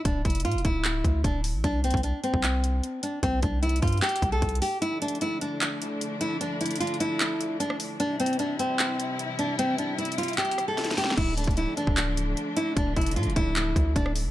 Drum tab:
CC |------------------------------------------------------------------------------------------------|------------------------------------------------------------------------------------------------|------------------------------------------------------------------------------------------------|------------------------------------------------------------------------------------------------|
HH |x-----------x--x--x--x--x---x---x---x-----------x-----------x-----------x-----------o-----------|x-----------x---x---x---x-----------x-----------x-----------x-----------x-----------x-----------|x-----------x-----------x---x---x---x--x--x--x--x---x---x---x-----------x---x---x---o-----------|x-----------x---x---x---x-----------x-----------x-----------x-----------x-----------x-----------|
CP |------------------------------------------------x-----------------------------------------------|------------------------------------------------x-----------------------------------------------|------------------------------------------------x-----------------------------------------------|------------------------------------------------x-----------------------------------------------|
SD |------------------------------------------------------------------------------------------------|------------------------------------------------------------------------------------------------|------------------------------------------------------------------------------------------------|------------------------------------------------------------------------------------------------|
BD |o-----------o-----------------------o-----------------------o-----------o-----------------------|o-----------------o-----------------------o-----------------------------------------------------|o-----------o-----------------------o-----------------------o-----------o-----------------------|------------------------------------------------------------------------------------------------|

CC |------------------------------------------------------------------------------------------------|------------------------------------------------------------------------------------------------|------------------------------------------------------------------------------------------------|x-----------------------------------------------------------------------------------------------|
HH |x-----------x--x--x--x--x---x---x---x-----------x-----------x-----------x-----------o-----------|x-----------x---x---x---x-----------x-----------x-----------x-----------x-----------x-----------|x-----------x-----------x---x---x---x--x--x--x--x---x---x---x-----------x---x---x---o-----------|------------x---x---x---x-----------x-----------x-----------x-----------x-----------x-----------|
CP |------------------------------------------------x-----------------------------------------------|------------------------------------------------x-----------------------------------------------|------------------------------------------------x-----------------------------------------------|------------------------------------------------x-----------------------------------------------|
SD |------------------------------------------------------------------------------r-----------------|------------------------------------------------------------------------------------------------|------------------------------------------------------------r-----------o---o---o---o---o---o---|------------------------------------------------------------------------------------------------|
BD |------------------------------------------------------------------------------------------------|------------------------------------------------------------------------------------------------|------------------------------------------------------------------------------------------------|o-----------------o-----------------------o-----------------------------------------------------|

CC |------------------------------------------------------------------------------------------------|
HH |x-----------x--x--x--x--x---x---x---x-----------x-----------x-----------x-----------o-----------|
CP |------------------------------------------------x-----------------------------------------------|
SD |------------------------------------------------------------------------------r-----------------|
BD |o-----------o-----------------------o-----------------------o-----------o-----------------------|